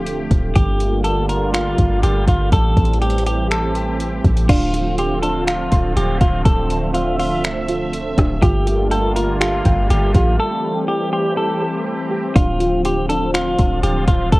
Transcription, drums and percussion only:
0.07 closed hi-hat
0.31 kick, closed hi-hat
0.56 kick, closed hi-hat
0.80 closed hi-hat
1.04 closed hi-hat
1.29 closed hi-hat
1.54 finger snap, closed hi-hat
1.78 kick, closed hi-hat
2.03 closed hi-hat
2.28 kick, closed hi-hat
2.52 kick, closed hi-hat
2.77 kick, closed hi-hat
2.85 closed hi-hat
2.93 closed hi-hat
3.02 closed hi-hat
3.10 closed hi-hat
3.18 closed hi-hat
3.26 closed hi-hat
3.51 finger snap, closed hi-hat
3.75 closed hi-hat
4.00 closed hi-hat
4.24 kick, closed hi-hat
4.37 closed hi-hat
4.49 kick, closed hi-hat, crash
4.74 closed hi-hat
4.98 closed hi-hat
5.23 closed hi-hat
5.47 finger snap, closed hi-hat
5.72 kick, closed hi-hat
5.97 closed hi-hat
6.21 kick, closed hi-hat
6.46 kick, closed hi-hat
6.70 closed hi-hat
6.95 closed hi-hat
7.20 open hi-hat
7.44 finger snap, closed hi-hat
7.68 closed hi-hat
7.93 closed hi-hat
8.18 kick, cross-stick, closed hi-hat
8.42 kick, closed hi-hat
8.67 closed hi-hat
8.91 closed hi-hat
9.16 closed hi-hat
9.41 finger snap, closed hi-hat
9.65 kick, closed hi-hat
9.90 closed hi-hat
10.14 kick, closed hi-hat
12.36 kick, closed hi-hat
12.60 closed hi-hat
12.85 closed hi-hat
13.10 closed hi-hat
13.34 finger snap, closed hi-hat
13.58 kick, closed hi-hat
13.84 closed hi-hat
14.08 kick, closed hi-hat
14.32 kick, closed hi-hat

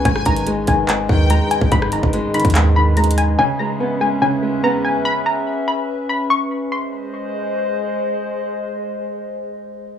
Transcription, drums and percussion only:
0.05 kick, closed hi-hat
0.16 cross-stick
0.25 kick, closed hi-hat, open hi-hat
0.36 closed hi-hat
0.47 closed hi-hat
0.67 kick, closed hi-hat
0.88 clap, closed hi-hat
1.09 kick
1.30 closed hi-hat
1.51 closed hi-hat
1.61 kick
1.72 kick, closed hi-hat
1.82 cross-stick
1.92 closed hi-hat
2.03 kick
2.13 closed hi-hat
2.34 closed hi-hat
2.40 closed hi-hat
2.45 kick, closed hi-hat
2.50 closed hi-hat
2.55 clap, closed hi-hat
2.97 closed hi-hat
3.04 closed hi-hat
3.11 closed hi-hat
3.18 closed hi-hat

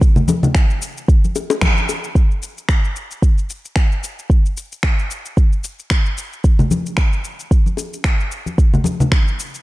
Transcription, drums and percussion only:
0.01 kick, shaker
0.16 low conga, shaker
0.28 high bongo, high conga, shaker
0.43 low conga, shaker
0.55 finger snap, kick, shaker
0.70 shaker
0.82 shaker
0.97 shaker
1.08 kick, shaker
1.24 high conga, shaker
1.36 high bongo, shaker
1.50 high bongo, shaker
1.61 finger snap, kick, high conga, shaker
1.77 shaker
1.89 high bongo, shaker
2.04 shaker
2.15 kick, shaker
2.31 shaker
2.43 shaker
2.58 shaker
2.69 finger snap, kick, shaker
2.85 shaker
2.96 shaker
3.11 shaker
3.22 kick, shaker
3.38 shaker
3.50 shaker
3.65 shaker
3.76 finger snap, kick, shaker
3.92 shaker
4.04 shaker
4.19 shaker
4.30 kick, shaker
4.46 shaker
4.57 shaker
4.72 shaker
4.83 finger snap, kick, shaker
4.99 shaker
5.11 shaker
5.26 shaker
5.37 kick, shaker
5.53 shaker
5.64 shaker
5.79 shaker
5.90 finger snap, kick, shaker
6.06 shaker
6.18 shaker
6.33 shaker
6.44 kick, shaker
6.59 low conga, shaker
6.71 high conga, shaker
6.86 shaker
6.97 finger snap, kick, shaker
7.13 shaker
7.24 shaker
7.40 shaker
7.51 kick, shaker
7.66 high conga, shaker
7.77 high bongo, shaker
7.93 shaker
8.04 finger snap, kick, shaker
8.20 shaker
8.32 shaker
8.46 high conga, shaker
8.58 kick, shaker
8.74 low conga, shaker
8.84 high bongo, high conga, shaker
9.00 low conga, shaker
9.12 finger snap, kick, shaker
9.28 shaker
9.40 shaker
9.55 shaker

